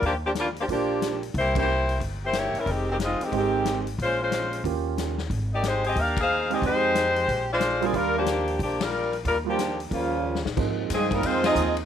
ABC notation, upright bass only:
X:1
M:4/4
L:1/8
Q:"Swing" 1/4=182
K:Eb
V:1 name="Upright bass" clef=bass
E,,4 B,,,4 | C,,4 G,,,3 z | F,,,3 z A,,,4 | B,,,4 E,,4 |
A,,,4 E,,4 | F,,4 B,,,4 | E,,4 B,,,4 | E,,4 E,,3 B,,, |
A,,2 G,,2 F,,2 E,,2 |]